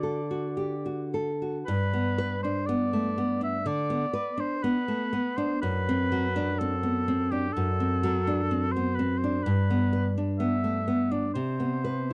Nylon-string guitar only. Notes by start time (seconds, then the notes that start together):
Already playing: D3 F#4
0.03 A4
0.31 F#4
0.57 G4
0.86 F#4
1.14 A4
1.42 F#4
1.68 G2
1.93 B3
2.18 B4
2.44 D4
2.69 B3
2.93 A3
3.18 B3
3.41 D4
3.66 D3
3.90 B3
4.13 B4
4.38 D4
4.64 B3
4.88 A3
5.13 B3
5.38 D4
5.63 F#2
5.89 C4
6.12 F#3
6.36 D4
6.61 C4
6.83 B3
7.08 C4
7.32 D4
7.57 F#2
7.80 C4
8.03 F#3
8.27 D4
8.51 C4
8.76 B3
8.99 C4
9.24 D4
9.46 G2
9.70 B3
9.93 B4
10.18 D4
10.40 B3
10.64 A3
10.88 B3
11.11 D4
11.35 C3
11.60 B3
11.84 B4